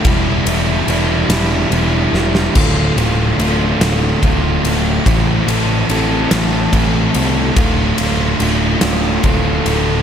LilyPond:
<<
  \new Staff \with { instrumentName = "Distorted electric guitar" } { \time 6/8 \key d \minor \tempo 4. = 48 <e, b, e g d' e'>8 <e g d' e'>8 <e g d' e'>8 <e, b, e g d' e'>8 <e g d' e'>4 | <d, a, d a f'>8 <d a f'>8 <a, d a f'>8 <d, a, d a f'>8 <a, d a f'>4 | <a, e a c' e' a'>8 <a c' e' a'>8 <a c' e' a'>8 <a, e a c' e' a'>8 <a c' e' a'>4 | <d, a, d a f'>8 <d a f'>8 <a, d a f'>8 <d, a, d a f'>8 <a, d a f'>4 | }
  \new Staff \with { instrumentName = "Picked electric bass" } { \clef bass \time 6/8 \key d \minor e,,8 e,,8 e,,8 e,,8 e,,8 e,,8 | d,,8 d,,8 d,,8 d,,8 d,,8 d,,8 | a,,8 a,,8 a,,8 a,,8 a,,8 c,8 | d,,8 d,,8 d,,8 d,,8 d,,8 d,,8 | }
  \new DrumStaff \with { instrumentName = "Drums" } \drummode { \time 6/8 <bd cymr>8 cymr8 cymr8 <cymr sn>8 cymr8 sn16 sn16 | <cymc bd>8 cymr8 cymr8 <cymr sn>8 <bd cymr>8 cymr8 | <bd cymr>8 cymr8 cymr8 <cymr sn>8 <bd cymr>8 cymr8 | <bd cymr>8 cymr8 cymr8 <cymr sn>8 <bd cymr>8 cymr8 | }
>>